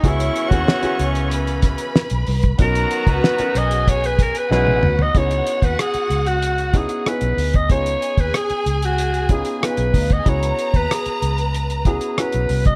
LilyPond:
<<
  \new Staff \with { instrumentName = "String section" } { \time 4/4 \key cis \dorian \tempo 4 = 94 <cis'' cis'''>2 <b' b''>2 | <fis' ais''>4. <gis' gis''>4. <fis' fis''>4 | <fis' fis''>2.~ <fis' fis''>8 r8 | <gis' gis''>2.~ <gis' gis''>16. r32 <dis' dis''>32 <eis' eis''>32 <fis' fis''>32 <gis' gis''>32 |
<b' ais''>2.~ <b' ais''>8 r8 | }
  \new Staff \with { instrumentName = "Alto saxophone" } { \time 4/4 \key cis \dorian \tuplet 3/2 { e'4 fis'8~ } fis'8. r2 r16 | ais'8. b'8. dis''8 cis''16 b'16 ais'16 b'16 b'8. dis''16 | cis''8. b'16 gis'8. fis'8. gis'8 b'8. dis''16 | cis''8. b'16 gis'8. fis'8. gis'8 b'8. dis''16 |
cis''8. b'16 gis'8. r8. gis'8 b'8. dis''16 | }
  \new Staff \with { instrumentName = "Grand piano" } { \time 4/4 \key cis \dorian <b cis' e' fis' gis'>8. <b cis' e' fis' gis'>8 <b cis' e' fis' gis'>4.~ <b cis' e' fis' gis'>16 r4 | <b cis' dis' fis' ais'>8. <b cis' dis' fis' ais'>8 <b cis' dis' fis' ais'>4.~ <b cis' dis' fis' ais'>16 <b cis' dis' fis' b'>4 | <b cis' dis' e' gis'>4.~ <b cis' dis' e' gis'>16 r8. <b cis' dis' e' gis'>8 <b cis' dis' e' gis'>4 | <b cis' dis' eis' gis'>4.~ <b cis' dis' eis' gis'>16 r8. <b cis' dis' eis' gis'>8 <b cis' dis' eis' gis'>4 |
<b cis' e' fis' gis'>4.~ <b cis' e' fis' gis'>16 r8. <b cis' e' fis' gis'>8 <b cis' e' fis' gis'>4 | }
  \new Staff \with { instrumentName = "Horn section" } { \clef bass \time 4/4 \key cis \dorian <fis, cis e cis'>2.~ <fis, cis e cis'>8 r8 | <dis fis b fis'>2~ <dis fis b fis'>8 r8 <gis e' gis'>8 r8 | r1 | r1 |
r1 | }
  \new Staff \with { instrumentName = "Fingered electric bass" } { \clef bass \time 4/4 \key cis \dorian cis,8 r16 dis,16 r8 cis,4~ cis,16 r8 b,,16 c,8 | b,,8 r16 cis,16 r8 b,,4~ b,,16 r16 b,,16 ais,,16 d,8 | cis,8 r16 dis,16 r8 cis,4~ cis,16 r8 b,,16 d,8 | cis,8 r16 dis,16 r8 cis,4~ cis,16 r8 b,,16 d,8 |
cis,8 r16 dis,16 r8 cis,4~ cis,16 r8 b,,16 c,8 | }
  \new DrumStaff \with { instrumentName = "Drums" } \drummode { \time 4/4 <hh bd>16 hh16 hh16 <hh bd>16 sn16 hh16 hh16 hh16 hh16 hh16 <hh bd sn>16 hh16 sn16 hh16 hho16 <hh bd>16 | <hh bd>16 hh16 hh16 <hh bd>16 sn16 hh16 hh16 hh16 <hh bd>16 hh16 <hh bd>16 hh16 sn16 tommh16 toml16 tomfh16 | <hh bd>16 hh16 hh16 <hh bd>16 <hh ss>16 hh16 hh16 hh16 hh16 hh16 <hh bd>16 hh16 <hh ss>16 hh16 hho16 <hh bd>16 | <hh bd>16 hh16 hh16 <hh bd>16 <hh ss>16 hh16 hh16 hh16 hh16 hh16 <hh bd>16 hh16 <hh ss>16 hh16 <hho bd>16 <hh bd>16 |
<hh bd>16 hh16 hh16 <hh bd>16 <hh ss>16 hh16 hh16 hh16 hh16 hh16 <hh bd>16 hh16 <hh ss>16 hh16 hho16 <hh bd>16 | }
>>